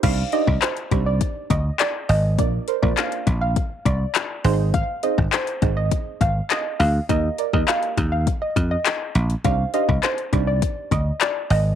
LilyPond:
<<
  \new Staff \with { instrumentName = "Synth pluck" } { \time 4/4 \key c \minor \tempo 4 = 102 f''8 ees''8 c''16 r8 d''8 r16 ees''16 r16 d''16 r16 ees''16 r16 | d''16 r8 d''16 f''16 r8 f''16 r8 d''8 r8 c''16 r16 | f''8 ees''8 c''16 r8 ees''8 r16 f''16 r16 ees''16 r16 f''16 r16 | ees''16 r8 ees''16 f''16 r8 f''16 r16 ees''16 r16 ees''8 r8. |
f''8 ees''8 c''16 r8 d''8 r16 ees''16 r16 d''16 r16 ees''16 r16 | }
  \new Staff \with { instrumentName = "Synth stab" } { \time 4/4 \key c \minor <d' ees' g' c'' d''>16 r16 <d' ees' g' c'' d''>8 r8 <d' ees' g' c'' d''>4 r4. | <bes d' f' bes' d''>16 r16 <bes' c''>16 <bes d' f' bes' c''>4 r4. r16 <c' ees' aes' c'' ees''>8~ | <c' ees' aes' c'' ees''>16 r16 <c' ees' aes' c'' ees''>8 r8 <c' ees' aes' c'' ees''>4 r4. | <bes ees' g' bes' ees''>16 r16 <bes' d''>16 <bes ees' g' bes' ees''>4 r2 r16 |
<d' ees' g' c'' d''>16 r16 <d' ees' g' c'' f''>8 r8 <d' ees' g' c'' d''>4 r4. | }
  \new Staff \with { instrumentName = "Slap bass" } { \clef bass \time 4/4 \key c \minor c,8 r16 c,16 r8 c,8. r16 d,8 r8 aes,,8 | bes,,8 r16 bes,,16 r8 bes,,8. r16 c,8 r8 aes,,8~ | aes,,8 r16 aes,,16 r8 aes,,8. r16 aes,,8 r8 d,8 | ees,8 r16 ees,16 r8 ees,8. r16 f,8 r8 bes,,8 |
c,8 r16 c,16 r8 c,8. r16 d,8 r8 aes,,8 | }
  \new DrumStaff \with { instrumentName = "Drums" } \drummode { \time 4/4 <cymc hh bd>8 hh16 bd16 <hc hh>16 hh16 <hh bd>8 <hh bd>8 <hh bd>8 <hc hh>8 hho8 | <hh bd>8 hh16 bd16 <hc hh>16 hh16 <hh bd>8 <hh bd>8 <hh bd>8 <hc hh>8 hho8 | <hh bd>8 hh16 bd16 <hc hh>16 hh16 <hh bd>8 <hh bd>8 <hh bd>8 <hc hh>8 hho8 | <hh bd>8 hh16 bd16 <hc hh>16 hh16 <hh bd>8 <hh bd>8 <hh bd>8 <hc hh>8 hh16 hh16 |
<hh bd>8 hh16 bd16 <hc hh>16 hh16 <hh bd>8 <hh bd>8 <hh bd>8 <hc hh>8 hho8 | }
>>